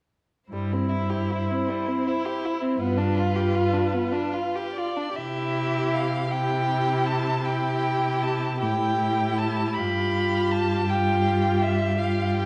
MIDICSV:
0, 0, Header, 1, 5, 480
1, 0, Start_track
1, 0, Key_signature, 0, "major"
1, 0, Tempo, 754717
1, 339, Time_signature, 12, 3, 24, 8
1, 2252, Tempo, 810811
1, 3212, Tempo, 768246
1, 6092, Tempo, 742574
1, 7826, End_track
2, 0, Start_track
2, 0, Title_t, "Violin"
2, 0, Program_c, 0, 40
2, 323, Note_on_c, 0, 72, 34
2, 1775, Note_on_c, 0, 71, 46
2, 1785, Note_off_c, 0, 72, 0
2, 2957, Note_off_c, 0, 71, 0
2, 2960, Note_on_c, 0, 74, 48
2, 3210, Note_on_c, 0, 76, 52
2, 3219, Note_off_c, 0, 74, 0
2, 3699, Note_on_c, 0, 77, 56
2, 3709, Note_off_c, 0, 76, 0
2, 3932, Note_on_c, 0, 79, 60
2, 3942, Note_off_c, 0, 77, 0
2, 4399, Note_on_c, 0, 81, 61
2, 4409, Note_off_c, 0, 79, 0
2, 4644, Note_on_c, 0, 79, 58
2, 4653, Note_off_c, 0, 81, 0
2, 5125, Note_on_c, 0, 81, 49
2, 5134, Note_off_c, 0, 79, 0
2, 5367, Note_off_c, 0, 81, 0
2, 5370, Note_on_c, 0, 79, 63
2, 5848, Note_on_c, 0, 81, 54
2, 5857, Note_off_c, 0, 79, 0
2, 6074, Note_on_c, 0, 83, 60
2, 6083, Note_off_c, 0, 81, 0
2, 6575, Note_on_c, 0, 81, 66
2, 6584, Note_off_c, 0, 83, 0
2, 6823, Note_on_c, 0, 79, 59
2, 6832, Note_off_c, 0, 81, 0
2, 7286, Note_on_c, 0, 76, 62
2, 7296, Note_off_c, 0, 79, 0
2, 7527, Note_on_c, 0, 77, 58
2, 7536, Note_off_c, 0, 76, 0
2, 7769, Note_off_c, 0, 77, 0
2, 7772, Note_on_c, 0, 79, 62
2, 7826, Note_off_c, 0, 79, 0
2, 7826, End_track
3, 0, Start_track
3, 0, Title_t, "Viola"
3, 0, Program_c, 1, 41
3, 332, Note_on_c, 1, 64, 36
3, 1777, Note_on_c, 1, 65, 48
3, 1786, Note_off_c, 1, 64, 0
3, 3093, Note_off_c, 1, 65, 0
3, 3213, Note_on_c, 1, 64, 42
3, 3911, Note_off_c, 1, 64, 0
3, 3935, Note_on_c, 1, 64, 44
3, 4636, Note_off_c, 1, 64, 0
3, 4648, Note_on_c, 1, 64, 44
3, 5357, Note_off_c, 1, 64, 0
3, 5381, Note_on_c, 1, 64, 42
3, 6099, Note_on_c, 1, 65, 42
3, 6108, Note_off_c, 1, 64, 0
3, 6810, Note_off_c, 1, 65, 0
3, 6813, Note_on_c, 1, 65, 52
3, 7515, Note_off_c, 1, 65, 0
3, 7529, Note_on_c, 1, 65, 49
3, 7826, Note_off_c, 1, 65, 0
3, 7826, End_track
4, 0, Start_track
4, 0, Title_t, "Violin"
4, 0, Program_c, 2, 40
4, 341, Note_on_c, 2, 55, 33
4, 461, Note_on_c, 2, 60, 30
4, 471, Note_off_c, 2, 55, 0
4, 567, Note_on_c, 2, 64, 33
4, 576, Note_off_c, 2, 60, 0
4, 698, Note_on_c, 2, 67, 28
4, 707, Note_off_c, 2, 64, 0
4, 830, Note_on_c, 2, 64, 32
4, 839, Note_off_c, 2, 67, 0
4, 958, Note_on_c, 2, 60, 33
4, 968, Note_off_c, 2, 64, 0
4, 1072, Note_on_c, 2, 55, 36
4, 1081, Note_off_c, 2, 60, 0
4, 1192, Note_on_c, 2, 60, 37
4, 1202, Note_off_c, 2, 55, 0
4, 1319, Note_on_c, 2, 64, 40
4, 1329, Note_off_c, 2, 60, 0
4, 1433, Note_on_c, 2, 67, 39
4, 1443, Note_off_c, 2, 64, 0
4, 1559, Note_on_c, 2, 64, 39
4, 1569, Note_off_c, 2, 67, 0
4, 1662, Note_on_c, 2, 60, 39
4, 1672, Note_off_c, 2, 64, 0
4, 1776, Note_off_c, 2, 60, 0
4, 1781, Note_on_c, 2, 59, 45
4, 1891, Note_on_c, 2, 62, 39
4, 1900, Note_off_c, 2, 59, 0
4, 2017, Note_on_c, 2, 65, 42
4, 2027, Note_off_c, 2, 62, 0
4, 2135, Note_on_c, 2, 67, 36
4, 2145, Note_off_c, 2, 65, 0
4, 2258, Note_on_c, 2, 65, 41
4, 2267, Note_off_c, 2, 67, 0
4, 2363, Note_on_c, 2, 62, 36
4, 2372, Note_off_c, 2, 65, 0
4, 2487, Note_on_c, 2, 59, 39
4, 2496, Note_off_c, 2, 62, 0
4, 2597, Note_on_c, 2, 62, 41
4, 2606, Note_off_c, 2, 59, 0
4, 2715, Note_on_c, 2, 65, 38
4, 2724, Note_off_c, 2, 62, 0
4, 2851, Note_on_c, 2, 67, 37
4, 2859, Note_off_c, 2, 65, 0
4, 2982, Note_on_c, 2, 65, 38
4, 2991, Note_off_c, 2, 67, 0
4, 3096, Note_on_c, 2, 62, 34
4, 3105, Note_off_c, 2, 65, 0
4, 3206, Note_off_c, 2, 62, 0
4, 3210, Note_on_c, 2, 67, 37
4, 3910, Note_off_c, 2, 67, 0
4, 3929, Note_on_c, 2, 67, 44
4, 4633, Note_off_c, 2, 67, 0
4, 4643, Note_on_c, 2, 67, 40
4, 5355, Note_off_c, 2, 67, 0
4, 5367, Note_on_c, 2, 67, 36
4, 6074, Note_off_c, 2, 67, 0
4, 6083, Note_on_c, 2, 67, 43
4, 6799, Note_off_c, 2, 67, 0
4, 6807, Note_on_c, 2, 67, 44
4, 7512, Note_off_c, 2, 67, 0
4, 7525, Note_on_c, 2, 67, 48
4, 7826, Note_off_c, 2, 67, 0
4, 7826, End_track
5, 0, Start_track
5, 0, Title_t, "Cello"
5, 0, Program_c, 3, 42
5, 330, Note_on_c, 3, 43, 42
5, 943, Note_off_c, 3, 43, 0
5, 1769, Note_on_c, 3, 43, 46
5, 2366, Note_off_c, 3, 43, 0
5, 3215, Note_on_c, 3, 48, 44
5, 5373, Note_on_c, 3, 45, 39
5, 5382, Note_off_c, 3, 48, 0
5, 6090, Note_on_c, 3, 43, 46
5, 6099, Note_off_c, 3, 45, 0
5, 7826, Note_off_c, 3, 43, 0
5, 7826, End_track
0, 0, End_of_file